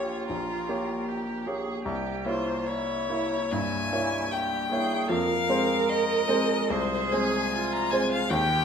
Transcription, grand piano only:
0.00 0.29 A#1 medium
0.00 0.69 A#3 soft
0.00 0.69 G4 soft
0.00 0.70 C#5 medium
0.29 0.68 A#1 medium
0.69 1.43 A#3 soft
0.69 1.43 G4 soft
0.69 1.44 C#5 medium
1.47 1.82 A#3 soft
1.47 1.82 G4 soft
1.47 1.83 C#5 medium
1.85 2.25 C2 medium
2.25 3.05 A#3 medium
2.25 3.05 E4 soft
2.25 3.05 C#5 medium
3.09 3.48 A#3 soft
3.09 3.48 E4 soft
3.09 3.48 C#5 medium
3.52 3.91 G2 medium
3.93 4.67 A#3 medium
3.93 4.67 E4 medium
3.93 4.67 C#5 medium
4.71 5.07 A#3 medium
4.71 5.07 E4 medium
4.71 5.07 C#5 medium
5.09 5.48 F2 medium
5.49 6.24 G#3 medium
5.49 6.24 C4 medium
5.49 6.24 C5 medium
6.28 6.66 G#3 medium
6.28 6.66 C4 medium
6.28 6.66 C5 medium
6.70 7.11 C2 medium
7.13 7.88 G#3 medium
7.13 7.88 C4 medium
7.13 7.88 C5 medium
7.93 8.27 G#3 medium
7.93 8.27 C4 medium
7.93 8.28 C5 medium
8.31 8.65 D#2 medium

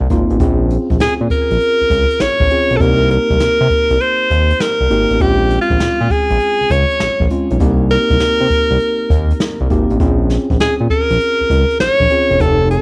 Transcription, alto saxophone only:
1.01 1.14 G#4 medium
1.31 2.23 A#4 loud
2.21 2.78 C#5 loud
2.77 2.83 A4 medium
2.81 3.11 A#4 loud
3.11 4.03 A#4 loud
4.01 4.63 C5 loud
4.61 5.23 A#4 medium
5.22 5.61 G4 medium
5.61 6.13 F4 medium
6.11 6.73 G#4 medium
6.72 7.31 C#5 medium
7.91 9.66 A#4 loud
10.61 10.74 G#4 medium
10.91 11.77 A#4 loud
11.81 12.42 C#5 loud
12.41 12.70 A4 loud
12.71 12.82 A4 medium

